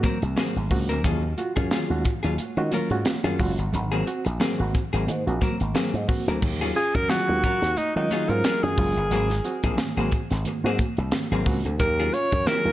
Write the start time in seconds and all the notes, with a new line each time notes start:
0.03 F#3 A#3 C4 F#4 A#4, kick, closed hi-hat, high conga
0.22 C2, muted hollow-body jazz guitar stroke, closed hi-hat
0.36 G#2 D#3 F#3 A#3 C4 G#4, snare, closed hi-hat, muted conga, high conga
0.56 G#1, closed hi-hat, low conga
0.71 C#2 A#3 C4 F#4, muted hollow-body jazz guitar stroke, kick, open hi-hat, muted conga, low conga
0.89 D2 F#3 A#3 C4 F#4 A#4, closed hi-hat
1.04 D#2 D#3 F#3 C#4 F4 G#4, kick, closed hi-hat, muted conga, low conga
1.23 muted hollow-body jazz guitar stroke
1.38 F4 F#4, muted hollow-body jazz guitar stroke, closed hi-hat, muted conga
1.56 F#2 F#3 C#4 F4 G#4, kick, closed hi-hat
1.71 D#3 F#3 C#4 F4 G#4, snare, closed hi-hat, muted conga, high conga
1.90 D#2 G#3 C#4 F4 F#4
2.05 F4 F#4, muted hollow-body jazz guitar stroke, kick, closed hi-hat
2.23 D#2 F#3 C#4 F4 G#4, closed hi-hat
2.38 muted slap bass stroke, muted hollow-body jazz guitar stroke, closed hi-hat, high conga
2.57 D#3 G#3 C#4 F4 F#4, muted hollow-body jazz guitar stroke
2.72 D#3 F#3 C#4 F4 A#4, closed hi-hat, muted conga, high conga
2.90 G#2 G#3 C#4 F4 F#4, muted hollow-body jazz guitar stroke, closed hi-hat
3.05 F4 F#4, muted hollow-body jazz guitar stroke, snare, closed hi-hat, muted conga, high conga
3.24 F#2 D#3 F#3 C#4 F4 G#4, low conga
3.39 F#1 G#3 C#4 F4 F#4, muted hollow-body jazz guitar stroke, kick, open hi-hat, muted conga, low conga
3.58 G1, muted hollow-body jazz guitar stroke, closed hi-hat
3.73 G#1 G#2 D#3, muted hollow-body jazz guitar stroke, closed hi-hat, muted conga, low conga
3.92 F#3 A#3 C4 G#4
4.07 C4 F#4, muted hollow-body jazz guitar stroke, closed hi-hat
4.25 A#1, muted hollow-body jazz guitar stroke, closed hi-hat
4.40 G#2 D#3 F#3 A#3 C4 G#4, snare, closed hi-hat, muted conga, high conga
4.59 G#1 A#3 C4 F#4
4.74 C4 F#4, muted hollow-body jazz guitar stroke, kick, closed hi-hat, muted conga
4.93 G#1 F#3 A#3 C4 G#4, closed hi-hat
5.07 G#2 D#3, muted hollow-body jazz guitar stroke, closed hi-hat, muted conga, high conga
5.27 A#1 A#3 C4 F#4, closed hi-hat
5.41 F#3 A#3 C4 F#4 A#4, kick, closed hi-hat, high conga
5.60 G#1, muted hollow-body jazz guitar stroke, closed hi-hat
5.75 G#2 D#3 F#3 A#3 C4 G#4, snare, closed hi-hat, high conga
5.94 G#2, closed hi-hat, low conga
6.08 A#3 C4 F#4, muted hollow-body jazz guitar stroke, kick, open hi-hat, low conga
6.27 D2 F#3 A#3 C4 F#4 A#4, closed hi-hat
6.41 D#2 D#3, muted hollow-body jazz guitar stroke, kick, crash, muted conga, low conga
6.61 F#3 C#4 F4 G#4, closed hi-hat
6.76 C#4 F4 G#4, muted hollow-body jazz guitar stroke, closed hi-hat
6.95 F#2 A#4, muted hollow-body jazz guitar stroke, kick, closed hi-hat
7.09 D#3 F#3 C#4 F4 F#4 G#4, snare, closed hi-hat, high conga
7.28 D#2 F#3 G#3 C#4 F4, muted hollow-body jazz guitar stroke
7.43 F#3 C#4 F4 A#4, kick, closed hi-hat
7.62 D#2, muted hollow-body jazz guitar stroke, snare, closed hi-hat
7.76 D#4, muted slap bass stroke, closed hi-hat, muted conga, high conga
7.95 D#3 F#3 G#3 C#4 D#4 F4, muted hollow-body jazz guitar stroke
8.11 D#3 F#3 C#4 F4 G#4, closed hi-hat, muted conga, high conga
8.29 G#2 F#3 G#3 C#4 F4 A#4, muted hollow-body jazz guitar stroke, closed hi-hat
8.44 F#3 C#4 F4 G#4, snare, closed hi-hat, muted conga, high conga
8.63 F#2 D#3 G#4, closed hi-hat, low conga
8.77 F#1 F#3 G#3 C#4 F4, muted hollow-body jazz guitar stroke, kick, open hi-hat, low conga
8.96 G1, muted hollow-body jazz guitar stroke, closed hi-hat
9.10 G#1 G#2 D#3 F#3 A#3 C4 G#4, closed hi-hat, muted conga, low conga
9.30 muted hollow-body jazz guitar stroke, snare, closed hi-hat
9.44 C4 F#4, muted hollow-body jazz guitar stroke, closed hi-hat
9.63 A#1 F#3 A#3 C4 G#4, kick, closed hi-hat
9.78 G#2 D#3, muted hollow-body jazz guitar stroke, snare, closed hi-hat, muted conga, high conga
9.96 G#1 F#3 A#3 C4 F#4 G#4, closed hi-hat
10.11 C4 F#4, muted hollow-body jazz guitar stroke, kick, closed hi-hat
10.30 G#1, muted hollow-body jazz guitar stroke, snare, closed hi-hat
10.45 G#2 D#3, muted slap bass stroke, muted hollow-body jazz guitar stroke, closed hi-hat, muted conga, high conga
10.64 G#2 A#3 C4 F#4 G#4
10.68 F#3
10.79 C4 F#4, muted hollow-body jazz guitar stroke, kick, closed hi-hat, muted conga, high conga
10.97 C2, muted hollow-body jazz guitar stroke, closed hi-hat
11.12 G#2 D#3, muted hollow-body jazz guitar stroke, snare, closed hi-hat, high conga
11.31 G#1 F#3 A#3 C4 G#4, low conga
11.45 C#2 A#3 C4 F#4, muted hollow-body jazz guitar stroke, kick, open hi-hat, low conga
11.64 D2 C4 F#4, muted hollow-body jazz guitar stroke, closed hi-hat
11.78 D#2 D#3 A#4, muted hollow-body jazz guitar stroke, kick, closed hi-hat, low conga
12.00 F#3 C#4 F4 G#4
12.13 C#4 F4 C#5, muted hollow-body jazz guitar stroke, closed hi-hat, muted conga
12.32 F#2, muted hollow-body jazz guitar stroke, kick, closed hi-hat
12.46 D#3 F#3 C#4 F4 G#4 A#4, snare, closed hi-hat, muted conga, high conga
12.65 D#2 F#3 G#3 C#4 F4, muted hollow-body jazz guitar stroke, closed hi-hat